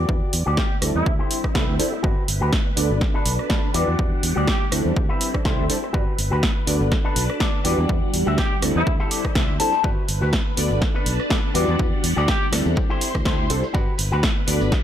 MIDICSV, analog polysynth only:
0, 0, Header, 1, 2, 480
1, 0, Start_track
1, 0, Key_signature, 1, "major"
1, 0, Tempo, 487805
1, 86, Time_signature, 4, 2, 24, 8
1, 14596, End_track
2, 0, Start_track
2, 0, Title_t, "Analog polysynth"
2, 0, Program_c, 0, 90
2, 82, Note_on_c, 0, 55, 75
2, 85, Note_on_c, 0, 62, 63
2, 87, Note_on_c, 0, 64, 67
2, 88, Note_on_c, 0, 66, 63
2, 91, Note_on_c, 0, 71, 82
2, 164, Note_off_c, 0, 55, 0
2, 166, Note_off_c, 0, 62, 0
2, 167, Note_off_c, 0, 64, 0
2, 167, Note_off_c, 0, 66, 0
2, 169, Note_off_c, 0, 71, 0
2, 799, Note_on_c, 0, 55, 88
2, 803, Note_on_c, 0, 60, 85
2, 806, Note_on_c, 0, 62, 79
2, 811, Note_on_c, 0, 64, 82
2, 814, Note_on_c, 0, 69, 99
2, 1496, Note_off_c, 0, 55, 0
2, 1499, Note_off_c, 0, 60, 0
2, 1500, Note_off_c, 0, 62, 0
2, 1502, Note_off_c, 0, 64, 0
2, 1504, Note_off_c, 0, 69, 0
2, 1522, Note_on_c, 0, 55, 80
2, 1525, Note_on_c, 0, 60, 71
2, 1526, Note_on_c, 0, 62, 77
2, 1527, Note_on_c, 0, 64, 77
2, 1530, Note_on_c, 0, 69, 88
2, 1604, Note_off_c, 0, 55, 0
2, 1605, Note_off_c, 0, 60, 0
2, 1606, Note_off_c, 0, 62, 0
2, 1607, Note_off_c, 0, 64, 0
2, 1608, Note_off_c, 0, 69, 0
2, 1762, Note_on_c, 0, 55, 88
2, 1763, Note_on_c, 0, 60, 89
2, 1765, Note_on_c, 0, 62, 87
2, 1767, Note_on_c, 0, 64, 86
2, 1769, Note_on_c, 0, 69, 101
2, 1892, Note_off_c, 0, 55, 0
2, 1893, Note_off_c, 0, 60, 0
2, 1894, Note_off_c, 0, 62, 0
2, 1895, Note_off_c, 0, 64, 0
2, 1896, Note_off_c, 0, 69, 0
2, 2002, Note_on_c, 0, 59, 75
2, 2004, Note_on_c, 0, 62, 66
2, 2006, Note_on_c, 0, 66, 67
2, 2008, Note_on_c, 0, 67, 69
2, 2010, Note_on_c, 0, 74, 78
2, 2084, Note_off_c, 0, 59, 0
2, 2085, Note_off_c, 0, 62, 0
2, 2086, Note_off_c, 0, 66, 0
2, 2087, Note_off_c, 0, 67, 0
2, 2088, Note_off_c, 0, 74, 0
2, 2718, Note_on_c, 0, 59, 89
2, 2721, Note_on_c, 0, 62, 85
2, 2726, Note_on_c, 0, 66, 81
2, 2730, Note_on_c, 0, 69, 83
2, 2734, Note_on_c, 0, 74, 100
2, 3416, Note_off_c, 0, 59, 0
2, 3418, Note_off_c, 0, 62, 0
2, 3420, Note_off_c, 0, 66, 0
2, 3422, Note_off_c, 0, 69, 0
2, 3424, Note_off_c, 0, 74, 0
2, 3441, Note_on_c, 0, 59, 82
2, 3443, Note_on_c, 0, 62, 74
2, 3445, Note_on_c, 0, 66, 77
2, 3447, Note_on_c, 0, 69, 71
2, 3449, Note_on_c, 0, 74, 91
2, 3524, Note_off_c, 0, 59, 0
2, 3525, Note_off_c, 0, 62, 0
2, 3525, Note_off_c, 0, 66, 0
2, 3527, Note_off_c, 0, 69, 0
2, 3527, Note_off_c, 0, 74, 0
2, 3680, Note_on_c, 0, 55, 87
2, 3681, Note_on_c, 0, 62, 84
2, 3683, Note_on_c, 0, 64, 81
2, 3685, Note_on_c, 0, 66, 87
2, 3688, Note_on_c, 0, 71, 97
2, 3811, Note_off_c, 0, 55, 0
2, 3812, Note_off_c, 0, 62, 0
2, 3813, Note_off_c, 0, 64, 0
2, 3814, Note_off_c, 0, 66, 0
2, 3815, Note_off_c, 0, 71, 0
2, 3921, Note_on_c, 0, 55, 72
2, 3923, Note_on_c, 0, 62, 69
2, 3925, Note_on_c, 0, 64, 67
2, 3928, Note_on_c, 0, 66, 68
2, 3929, Note_on_c, 0, 71, 82
2, 4004, Note_off_c, 0, 55, 0
2, 4005, Note_off_c, 0, 62, 0
2, 4006, Note_off_c, 0, 64, 0
2, 4007, Note_off_c, 0, 66, 0
2, 4007, Note_off_c, 0, 71, 0
2, 4639, Note_on_c, 0, 55, 92
2, 4643, Note_on_c, 0, 60, 89
2, 4647, Note_on_c, 0, 62, 82
2, 4651, Note_on_c, 0, 64, 84
2, 4654, Note_on_c, 0, 69, 97
2, 5228, Note_off_c, 0, 55, 0
2, 5231, Note_off_c, 0, 60, 0
2, 5233, Note_off_c, 0, 62, 0
2, 5234, Note_off_c, 0, 64, 0
2, 5236, Note_off_c, 0, 69, 0
2, 5254, Note_on_c, 0, 55, 84
2, 5256, Note_on_c, 0, 60, 77
2, 5259, Note_on_c, 0, 62, 76
2, 5260, Note_on_c, 0, 64, 77
2, 5263, Note_on_c, 0, 69, 91
2, 5321, Note_off_c, 0, 55, 0
2, 5322, Note_off_c, 0, 60, 0
2, 5323, Note_off_c, 0, 62, 0
2, 5324, Note_off_c, 0, 64, 0
2, 5325, Note_off_c, 0, 69, 0
2, 5361, Note_on_c, 0, 55, 77
2, 5363, Note_on_c, 0, 60, 67
2, 5365, Note_on_c, 0, 62, 72
2, 5366, Note_on_c, 0, 64, 69
2, 5369, Note_on_c, 0, 69, 81
2, 5443, Note_off_c, 0, 55, 0
2, 5445, Note_off_c, 0, 60, 0
2, 5446, Note_off_c, 0, 62, 0
2, 5446, Note_off_c, 0, 64, 0
2, 5448, Note_off_c, 0, 69, 0
2, 5494, Note_on_c, 0, 55, 79
2, 5495, Note_on_c, 0, 60, 69
2, 5498, Note_on_c, 0, 62, 70
2, 5499, Note_on_c, 0, 64, 71
2, 5501, Note_on_c, 0, 69, 83
2, 5561, Note_off_c, 0, 55, 0
2, 5562, Note_off_c, 0, 60, 0
2, 5563, Note_off_c, 0, 62, 0
2, 5564, Note_off_c, 0, 64, 0
2, 5565, Note_off_c, 0, 69, 0
2, 5601, Note_on_c, 0, 55, 80
2, 5602, Note_on_c, 0, 60, 69
2, 5604, Note_on_c, 0, 62, 67
2, 5606, Note_on_c, 0, 64, 68
2, 5609, Note_on_c, 0, 69, 84
2, 5683, Note_off_c, 0, 55, 0
2, 5684, Note_off_c, 0, 60, 0
2, 5685, Note_off_c, 0, 62, 0
2, 5686, Note_off_c, 0, 64, 0
2, 5687, Note_off_c, 0, 69, 0
2, 5840, Note_on_c, 0, 59, 70
2, 5842, Note_on_c, 0, 62, 63
2, 5845, Note_on_c, 0, 66, 69
2, 5847, Note_on_c, 0, 67, 67
2, 5848, Note_on_c, 0, 74, 82
2, 5923, Note_off_c, 0, 59, 0
2, 5924, Note_off_c, 0, 62, 0
2, 5926, Note_off_c, 0, 66, 0
2, 5926, Note_off_c, 0, 67, 0
2, 5927, Note_off_c, 0, 74, 0
2, 6558, Note_on_c, 0, 59, 92
2, 6561, Note_on_c, 0, 62, 88
2, 6566, Note_on_c, 0, 66, 85
2, 6569, Note_on_c, 0, 69, 85
2, 6573, Note_on_c, 0, 74, 102
2, 7256, Note_off_c, 0, 59, 0
2, 7258, Note_off_c, 0, 62, 0
2, 7260, Note_off_c, 0, 66, 0
2, 7262, Note_off_c, 0, 69, 0
2, 7264, Note_off_c, 0, 74, 0
2, 7282, Note_on_c, 0, 59, 79
2, 7284, Note_on_c, 0, 62, 72
2, 7286, Note_on_c, 0, 66, 76
2, 7288, Note_on_c, 0, 69, 74
2, 7290, Note_on_c, 0, 74, 92
2, 7364, Note_off_c, 0, 59, 0
2, 7365, Note_off_c, 0, 62, 0
2, 7366, Note_off_c, 0, 66, 0
2, 7367, Note_off_c, 0, 69, 0
2, 7368, Note_off_c, 0, 74, 0
2, 7523, Note_on_c, 0, 55, 91
2, 7525, Note_on_c, 0, 62, 82
2, 7527, Note_on_c, 0, 64, 85
2, 7529, Note_on_c, 0, 66, 86
2, 7530, Note_on_c, 0, 71, 106
2, 7653, Note_off_c, 0, 55, 0
2, 7654, Note_off_c, 0, 62, 0
2, 7655, Note_off_c, 0, 64, 0
2, 7656, Note_off_c, 0, 66, 0
2, 7656, Note_off_c, 0, 71, 0
2, 7762, Note_on_c, 0, 55, 72
2, 7765, Note_on_c, 0, 62, 68
2, 7767, Note_on_c, 0, 64, 68
2, 7769, Note_on_c, 0, 66, 64
2, 7771, Note_on_c, 0, 71, 82
2, 7844, Note_off_c, 0, 55, 0
2, 7846, Note_off_c, 0, 62, 0
2, 7846, Note_off_c, 0, 64, 0
2, 7847, Note_off_c, 0, 66, 0
2, 7848, Note_off_c, 0, 71, 0
2, 8478, Note_on_c, 0, 55, 87
2, 8483, Note_on_c, 0, 60, 84
2, 8486, Note_on_c, 0, 62, 84
2, 8491, Note_on_c, 0, 64, 82
2, 8494, Note_on_c, 0, 69, 102
2, 9176, Note_off_c, 0, 55, 0
2, 9178, Note_off_c, 0, 60, 0
2, 9180, Note_off_c, 0, 62, 0
2, 9183, Note_off_c, 0, 64, 0
2, 9184, Note_off_c, 0, 69, 0
2, 9201, Note_on_c, 0, 55, 80
2, 9203, Note_on_c, 0, 60, 78
2, 9205, Note_on_c, 0, 62, 72
2, 9206, Note_on_c, 0, 64, 75
2, 9209, Note_on_c, 0, 69, 91
2, 9284, Note_off_c, 0, 55, 0
2, 9285, Note_off_c, 0, 60, 0
2, 9286, Note_off_c, 0, 62, 0
2, 9286, Note_off_c, 0, 64, 0
2, 9288, Note_off_c, 0, 69, 0
2, 9442, Note_on_c, 0, 55, 94
2, 9443, Note_on_c, 0, 60, 83
2, 9446, Note_on_c, 0, 62, 85
2, 9447, Note_on_c, 0, 64, 81
2, 9450, Note_on_c, 0, 69, 99
2, 9572, Note_off_c, 0, 55, 0
2, 9573, Note_off_c, 0, 60, 0
2, 9574, Note_off_c, 0, 62, 0
2, 9575, Note_off_c, 0, 64, 0
2, 9576, Note_off_c, 0, 69, 0
2, 9683, Note_on_c, 0, 59, 77
2, 9685, Note_on_c, 0, 62, 69
2, 9687, Note_on_c, 0, 66, 64
2, 9689, Note_on_c, 0, 67, 66
2, 9691, Note_on_c, 0, 74, 84
2, 9765, Note_off_c, 0, 59, 0
2, 9766, Note_off_c, 0, 62, 0
2, 9767, Note_off_c, 0, 66, 0
2, 9768, Note_off_c, 0, 67, 0
2, 9768, Note_off_c, 0, 74, 0
2, 10398, Note_on_c, 0, 59, 90
2, 10402, Note_on_c, 0, 62, 84
2, 10406, Note_on_c, 0, 66, 83
2, 10409, Note_on_c, 0, 69, 84
2, 10414, Note_on_c, 0, 74, 105
2, 11096, Note_off_c, 0, 59, 0
2, 11098, Note_off_c, 0, 62, 0
2, 11100, Note_off_c, 0, 66, 0
2, 11102, Note_off_c, 0, 69, 0
2, 11104, Note_off_c, 0, 74, 0
2, 11122, Note_on_c, 0, 59, 79
2, 11124, Note_on_c, 0, 62, 75
2, 11126, Note_on_c, 0, 66, 76
2, 11128, Note_on_c, 0, 69, 78
2, 11130, Note_on_c, 0, 74, 87
2, 11204, Note_off_c, 0, 59, 0
2, 11205, Note_off_c, 0, 62, 0
2, 11206, Note_off_c, 0, 66, 0
2, 11207, Note_off_c, 0, 69, 0
2, 11208, Note_off_c, 0, 74, 0
2, 11361, Note_on_c, 0, 55, 94
2, 11362, Note_on_c, 0, 62, 84
2, 11365, Note_on_c, 0, 64, 84
2, 11366, Note_on_c, 0, 66, 83
2, 11369, Note_on_c, 0, 71, 100
2, 11492, Note_off_c, 0, 55, 0
2, 11492, Note_off_c, 0, 62, 0
2, 11494, Note_off_c, 0, 64, 0
2, 11494, Note_off_c, 0, 66, 0
2, 11496, Note_off_c, 0, 71, 0
2, 11601, Note_on_c, 0, 55, 73
2, 11603, Note_on_c, 0, 62, 66
2, 11605, Note_on_c, 0, 64, 68
2, 11607, Note_on_c, 0, 66, 68
2, 11609, Note_on_c, 0, 71, 82
2, 11684, Note_off_c, 0, 55, 0
2, 11685, Note_off_c, 0, 62, 0
2, 11686, Note_off_c, 0, 64, 0
2, 11687, Note_off_c, 0, 66, 0
2, 11688, Note_off_c, 0, 71, 0
2, 12316, Note_on_c, 0, 55, 87
2, 12320, Note_on_c, 0, 60, 82
2, 12324, Note_on_c, 0, 62, 85
2, 12328, Note_on_c, 0, 64, 83
2, 12332, Note_on_c, 0, 69, 98
2, 13015, Note_off_c, 0, 55, 0
2, 13017, Note_off_c, 0, 60, 0
2, 13019, Note_off_c, 0, 62, 0
2, 13021, Note_off_c, 0, 64, 0
2, 13023, Note_off_c, 0, 69, 0
2, 13043, Note_on_c, 0, 55, 82
2, 13044, Note_on_c, 0, 60, 76
2, 13046, Note_on_c, 0, 62, 73
2, 13048, Note_on_c, 0, 64, 72
2, 13050, Note_on_c, 0, 69, 89
2, 13124, Note_off_c, 0, 55, 0
2, 13125, Note_off_c, 0, 60, 0
2, 13126, Note_off_c, 0, 62, 0
2, 13127, Note_off_c, 0, 64, 0
2, 13128, Note_off_c, 0, 69, 0
2, 13283, Note_on_c, 0, 55, 95
2, 13285, Note_on_c, 0, 60, 84
2, 13287, Note_on_c, 0, 62, 84
2, 13289, Note_on_c, 0, 64, 85
2, 13291, Note_on_c, 0, 69, 104
2, 13413, Note_off_c, 0, 55, 0
2, 13414, Note_off_c, 0, 60, 0
2, 13415, Note_off_c, 0, 62, 0
2, 13416, Note_off_c, 0, 64, 0
2, 13417, Note_off_c, 0, 69, 0
2, 13524, Note_on_c, 0, 59, 77
2, 13524, Note_on_c, 0, 62, 64
2, 13527, Note_on_c, 0, 66, 68
2, 13529, Note_on_c, 0, 67, 67
2, 13531, Note_on_c, 0, 74, 81
2, 13605, Note_off_c, 0, 59, 0
2, 13605, Note_off_c, 0, 62, 0
2, 13607, Note_off_c, 0, 66, 0
2, 13607, Note_off_c, 0, 67, 0
2, 13609, Note_off_c, 0, 74, 0
2, 14237, Note_on_c, 0, 59, 93
2, 14242, Note_on_c, 0, 62, 86
2, 14246, Note_on_c, 0, 66, 83
2, 14250, Note_on_c, 0, 69, 86
2, 14254, Note_on_c, 0, 74, 104
2, 14596, Note_off_c, 0, 59, 0
2, 14596, Note_off_c, 0, 62, 0
2, 14596, Note_off_c, 0, 66, 0
2, 14596, Note_off_c, 0, 69, 0
2, 14596, Note_off_c, 0, 74, 0
2, 14596, End_track
0, 0, End_of_file